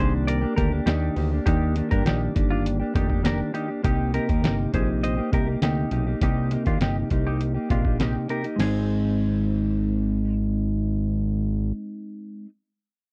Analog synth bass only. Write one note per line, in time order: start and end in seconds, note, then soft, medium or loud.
0.00 0.46 C2 medium
0.58 0.81 D2 medium
0.86 1.10 D#2 medium
1.16 1.40 D2 loud
1.46 1.82 D#2 loud
1.92 2.03 G2 medium
2.05 2.29 A#1 medium
2.36 2.83 G1 medium
2.95 3.43 F1 medium
3.84 4.20 C2 medium
4.29 4.45 D#2 medium
4.44 4.67 G1 medium
4.74 5.21 A#1 medium
5.33 5.56 C2 medium
5.62 5.86 D2 medium
5.91 6.15 B1 medium
6.21 6.57 C2 loud
6.67 6.78 D#2 medium
6.81 7.05 G1 medium
7.11 7.58 C2 medium
7.70 8.18 A#1 medium
8.59 11.73 G#1 medium